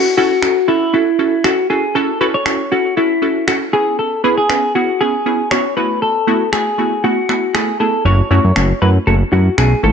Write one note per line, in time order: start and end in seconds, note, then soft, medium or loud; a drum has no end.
0.00 0.16 F#4 medium
0.17 0.33 C#4 loud
0.17 0.33 E4 medium
0.17 0.33 F#4 medium
0.17 0.70 F#4 medium
0.17 0.33 A4 loud
0.43 0.58 C#4 medium
0.43 0.58 E4 medium
0.43 0.58 F#4 medium
0.43 0.59 A4 medium
0.43 finger snap loud
0.68 0.84 C#4 medium
0.68 0.84 E4 medium
0.68 0.93 E4 medium
0.68 0.84 F#4 medium
0.68 0.84 A4 medium
0.93 1.09 C#4 medium
0.93 1.09 E4 medium
0.93 1.46 E4 medium
0.93 1.09 F#4 medium
0.93 1.09 A4 medium
1.19 1.34 C#4 medium
1.19 1.35 E4 medium
1.19 1.35 F#4 medium
1.19 1.35 A4 medium
1.44 1.60 C#4 medium
1.44 1.60 E4 medium
1.44 1.70 F#4 medium
1.44 1.60 F#4 medium
1.44 1.60 A4 loud
1.44 finger snap loud
1.70 1.85 C#4 medium
1.70 1.86 E4 medium
1.70 1.86 F#4 medium
1.70 1.96 G#4 medium
1.70 1.86 A4 medium
1.95 2.11 C#4 loud
1.95 2.11 E4 medium
1.95 2.11 F#4 medium
1.95 2.20 A4 medium
1.95 2.11 A4 loud
2.21 2.36 C#4 loud
2.21 2.36 E4 medium
2.21 2.36 F#4 medium
2.21 2.36 A4 loud
2.21 2.26 B4 medium
2.34 2.73 C#5 medium
2.46 2.62 C#4 medium
2.46 2.62 E4 medium
2.46 2.62 F#4 medium
2.46 2.62 A4 medium
2.46 finger snap loud
2.72 2.87 C#4 medium
2.72 2.87 E4 medium
2.72 2.95 F#4 medium
2.72 2.87 F#4 medium
2.72 2.87 A4 medium
2.97 3.12 C#4 medium
2.97 3.13 E4 medium
2.97 3.47 E4 medium
2.97 3.13 F#4 medium
2.97 3.13 A4 medium
3.22 3.38 C#4 medium
3.22 3.38 E4 medium
3.22 3.38 F#4 medium
3.22 3.38 A4 medium
3.47 3.63 C#4 medium
3.47 3.63 E4 medium
3.47 3.63 F#4 medium
3.47 3.55 F#4 medium
3.47 3.64 A4 loud
3.47 finger snap loud
3.73 4.14 B3 medium
3.73 4.15 C#4 medium
3.73 4.15 E4 medium
3.73 3.99 G#4 medium
3.73 4.15 G#4 medium
3.99 4.24 A4 medium
4.24 4.40 B3 medium
4.24 4.40 C#4 medium
4.24 4.40 E4 medium
4.24 4.40 G#4 loud
4.24 4.37 B4 medium
4.38 4.72 G#4 medium
4.49 4.65 B3 medium
4.49 4.65 C#4 medium
4.49 4.65 E4 medium
4.49 4.65 B4 medium
4.49 finger snap loud
4.75 4.91 B3 medium
4.75 4.91 C#4 medium
4.75 4.91 E4 medium
4.75 5.01 F#4 medium
4.75 4.91 G#4 medium
5.01 5.16 B3 medium
5.01 5.16 C#4 medium
5.01 5.16 E4 medium
5.01 5.51 G#4 medium
5.01 5.16 G#4 medium
5.26 5.41 B3 medium
5.26 5.41 C#4 medium
5.26 5.42 E4 medium
5.26 5.42 G#4 medium
5.51 5.67 B3 medium
5.51 5.67 C#4 medium
5.51 5.67 E4 medium
5.51 5.67 F#4 loud
5.51 5.75 C#5 medium
5.51 finger snap loud
5.77 6.18 A3 medium
5.77 6.18 B3 medium
5.77 6.18 E4 medium
5.77 6.18 F#4 medium
5.77 6.02 B4 medium
6.02 6.49 A4 medium
6.27 6.43 A3 loud
6.27 6.43 B3 medium
6.27 6.43 E4 medium
6.27 6.43 F#4 loud
6.53 6.69 A3 medium
6.53 6.69 B3 medium
6.53 6.69 E4 medium
6.53 6.69 F#4 medium
6.53 7.05 G#4 medium
6.53 finger snap loud
6.78 6.94 A3 medium
6.78 6.94 B3 medium
6.78 6.94 E4 medium
6.78 6.94 F#4 medium
7.04 7.19 A3 medium
7.04 7.19 B3 medium
7.04 7.20 E4 medium
7.04 7.56 F#4 medium
7.04 7.20 F#4 medium
7.29 7.45 A3 medium
7.29 7.45 B3 medium
7.29 7.45 E4 medium
7.29 7.45 F#4 medium
7.29 finger snap medium
7.54 7.70 A3 medium
7.54 7.70 B3 medium
7.54 7.70 E4 medium
7.54 7.80 G#4 medium
7.54 7.70 A4 loud
7.54 finger snap loud
7.80 7.96 A3 medium
7.80 7.96 B3 medium
7.80 7.96 E4 medium
7.80 7.96 G#4 medium
7.80 8.04 A4 medium
8.05 8.22 F#1 loud
8.05 8.21 A3 medium
8.05 8.21 C#4 medium
8.05 8.21 E4 medium
8.05 8.21 F#4 loud
8.05 8.30 C#5 loud
8.31 8.40 F#2 medium
8.31 8.46 A3 loud
8.31 8.46 C#4 medium
8.31 8.47 E4 medium
8.31 8.47 F#4 loud
8.31 8.81 C#5 loud
8.44 8.52 F#2 medium
8.56 8.73 F#1 loud
8.56 8.72 A3 medium
8.56 8.72 C#4 medium
8.56 8.72 E4 medium
8.56 8.72 F#4 medium
8.56 finger snap loud
8.82 8.98 F#2 loud
8.82 8.97 A3 medium
8.82 8.97 C#4 medium
8.82 8.97 E4 medium
8.82 8.98 F#4 medium
8.82 8.89 B4 medium
9.07 9.24 F#1 loud
9.07 9.23 A3 medium
9.07 9.23 C#4 medium
9.07 9.23 E4 medium
9.07 9.23 F#4 medium
9.07 9.14 A4 loud
9.32 9.49 F#2 loud
9.32 9.48 A3 medium
9.32 9.48 C#4 medium
9.32 9.48 E4 medium
9.32 9.58 F#4 medium
9.32 9.48 F#4 medium
9.58 9.75 B1 medium
9.58 9.73 A3 medium
9.58 9.74 C#4 medium
9.58 9.74 E4 medium
9.58 9.74 F#4 loud
9.58 9.83 G#4 medium
9.58 finger snap loud
9.83 9.92 G#1 loud
9.83 9.92 A3 medium
9.83 9.92 C#4 medium
9.83 9.92 E4 medium
9.83 9.92 A4 medium
9.83 9.92 A4 loud